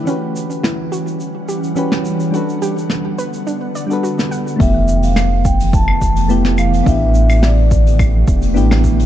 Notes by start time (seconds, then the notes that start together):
0.04 E3 G3 C#4 F#4 F#5, shaker
0.09 G4 B4
0.36 shaker
0.51 shaker
0.63 E4, snare, shaker
0.92 F#4, shaker
1.07 shaker
1.20 shaker
1.48 G4, shaker
1.64 shaker
1.75 E3 C#4 F#4 G4 B4, shaker
1.92 snare
2.05 shaker
2.20 shaker
2.31 D3 G3 B3 D4 F#4, shaker
2.35 A4 B4
2.49 shaker
2.62 G4, shaker
2.78 shaker
2.90 snare, shaker
3.18 B4, shaker
3.33 shaker
3.47 D4, shaker
3.75 D5, shaker
3.87 G3 D4 F#4
3.91 A4 B4, shaker
4.03 F#4, shaker
4.19 snare, shaker
4.31 F#5, shaker
4.47 shaker
4.56 E3 A3 B3 G4 E5, kick
4.60 F1 E3 G4, open hi-hat, shaker
4.88 shaker
4.96 G5
5.03 F5, open hi-hat, shaker
5.16 snare, open hi-hat, claves, shaker
5.45 G5, kick, shaker
5.60 open hi-hat, shaker
5.73 A5, kick, open hi-hat, shaker
5.88 claves
6.02 F1, kick, shaker
6.16 open hi-hat, shaker
6.29 A3 B3 E4 G4, open hi-hat, shaker
6.45 snare
6.58 F5, claves, shaker
6.74 open hi-hat, shaker
6.83 A1 D3 A3 B3 D4 E4 E5, kick, open hi-hat, shaker
6.90 G4
7.14 shaker
7.30 open hi-hat, claves, shaker
7.43 D5, snare, open hi-hat, shaker
7.71 kick, shaker
7.87 open hi-hat, shaker
7.99 kick, open hi-hat, claves, shaker
8.28 E1, kick, shaker
8.42 open hi-hat, shaker
8.54 A1 B3 D4 E4 G4, open hi-hat, shaker
8.71 snare, claves
8.84 kick, shaker
8.99 open hi-hat, shaker